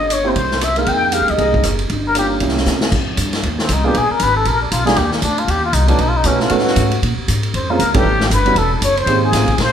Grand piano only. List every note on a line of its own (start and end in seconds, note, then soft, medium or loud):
0.24 0.34 A#3 medium
0.24 0.33 C4 medium
0.24 0.34 E4 medium
0.24 0.34 G4 medium
0.77 1.10 G#3 medium
0.77 1.11 A#3 medium
0.77 1.11 D#4 medium
0.77 1.11 A#4 medium
1.12 1.36 G#3 medium
1.12 1.37 A#3 soft
1.12 1.37 D#4 soft
1.12 1.37 G4 medium
1.38 1.76 G#3 medium
1.38 1.76 A#3 medium
1.38 1.76 D#4 medium
1.38 1.76 G#4 medium
2.15 2.39 A#3 soft
2.15 2.39 C#4 soft
2.15 2.40 F4 soft
2.15 2.40 G4 medium
2.40 2.78 A#3 medium
2.40 2.79 C#4 medium
2.40 2.79 E4 medium
2.40 2.79 G4 medium
3.84 3.93 A#3 medium
3.84 3.93 B3 medium
3.84 3.93 D4 medium
3.84 3.94 F4 medium
3.84 3.93 G#4 medium
4.85 4.95 G3 medium
4.85 4.95 A#3 medium
4.85 4.96 D4 medium
4.85 4.96 D#4 medium
4.85 4.96 F4 medium
5.87 5.98 A3 medium
5.87 5.98 B3 medium
5.87 5.98 C#4 medium
5.87 5.98 D#4 medium
5.87 5.98 F#4 medium
6.25 6.49 A3 medium
6.25 6.49 B3 medium
6.25 6.49 C#4 medium
6.25 6.50 D#4 medium
6.25 6.50 F#4 medium
6.51 6.89 A3 medium
6.51 6.88 B3 medium
6.51 6.88 C#4 medium
6.51 6.89 D#4 medium
6.51 6.89 A4 medium
7.70 7.78 G#3 medium
7.70 7.78 A#3 medium
7.70 7.79 C4 medium
7.70 7.78 C#4 medium
7.70 7.79 F4 medium
7.94 8.03 G3 medium
7.94 8.03 B3 medium
7.94 8.04 C#4 medium
7.94 8.04 E4 medium
7.94 8.04 A4 medium
8.45 8.55 G3 medium
8.45 8.55 B3 medium
8.45 8.55 C#4 medium
8.45 8.55 E4 medium
8.45 8.55 F#4 medium
9.07 9.31 G#3 medium
9.07 9.31 A#3 medium
9.07 9.31 C4 medium
9.07 9.32 D#4 medium
9.07 9.32 G4 medium
9.33 9.46 G#3 medium
9.33 9.46 A#3 soft
9.33 9.46 C4 medium
9.33 9.46 D#4 medium
9.33 9.47 F4 medium